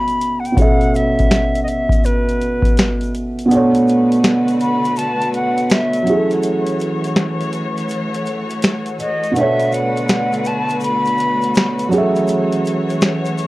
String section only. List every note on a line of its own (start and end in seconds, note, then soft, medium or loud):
3.50 6.04 D3 medium
3.50 6.04 A3 medium
3.50 6.04 F#4 medium
3.50 6.04 B4 medium
6.06 9.32 E3 medium
6.06 13.47 A3 medium
6.06 13.47 F#4 medium
6.06 9.32 C#5 medium
9.35 11.89 D3 medium
9.35 11.89 B4 medium
11.90 13.47 E3 medium
11.90 13.47 C#5 medium